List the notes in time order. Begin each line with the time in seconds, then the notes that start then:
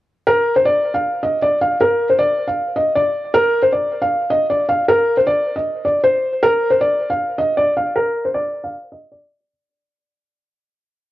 0.26 A#4
0.56 C5
0.65 D5
0.94 F5
1.23 D#5
1.42 D5
1.61 F5
1.81 A#4
2.10 C5
2.19 D5
2.48 F5
2.76 D#5
2.96 D5
3.34 A#4
3.63 C5
3.73 D5
4.02 F5
4.31 D#5
4.50 D5
4.69 F5
4.88 A#4
5.17 C5
5.27 D5
5.56 D#5
5.85 D5
6.04 C5
6.43 A#4
6.70 C5
6.81 D5
7.10 F5
7.38 D#5
7.57 D5
7.77 F5
7.96 A#4
8.25 C5
8.34 D5
8.64 F5
8.92 D#5
9.12 D5